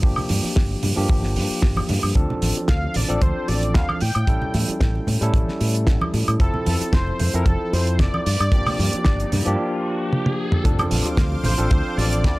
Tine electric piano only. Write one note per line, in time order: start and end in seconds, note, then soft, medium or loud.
0.02 0.93 F3 medium
0.02 0.93 A#3 medium
0.02 0.93 D4 medium
0.02 0.94 G4 medium
0.96 2.12 F3 medium
0.96 2.12 A#3 medium
0.96 2.13 D4 medium
0.96 2.13 G4 medium
2.15 3.05 F3 medium
2.15 3.06 C4 medium
2.15 3.06 D4 medium
2.15 3.06 A4 medium
3.08 3.99 F3 medium
3.08 4.00 C4 medium
3.08 4.00 D4 medium
3.08 4.00 A4 medium
4.27 5.18 G3 medium
4.27 5.18 C#4 medium
4.27 5.18 E4 medium
4.27 5.19 A4 medium
5.21 6.37 G3 medium
5.21 6.37 C#4 medium
5.21 6.38 E4 medium
5.21 6.38 A4 medium
6.39 7.30 F3 medium
6.39 7.30 C4 medium
6.39 7.31 E4 medium
6.39 7.31 A4 medium
7.33 8.24 F3 medium
7.33 8.24 C4 medium
7.33 8.25 E4 medium
7.33 8.25 A4 medium
8.52 9.43 F3 medium
8.52 9.43 A#3 medium
8.52 9.43 D4 medium
8.52 9.44 G4 medium
9.45 10.61 F3 medium
9.45 10.62 A#3 medium
9.45 10.62 D4 medium
9.45 10.63 G4 medium
10.64 11.55 F3 medium
10.64 11.55 C4 medium
10.64 11.55 D4 medium
10.64 11.56 A4 medium
11.57 12.39 F3 medium
11.57 12.39 C4 medium
11.57 12.39 D4 medium
11.57 12.39 A4 medium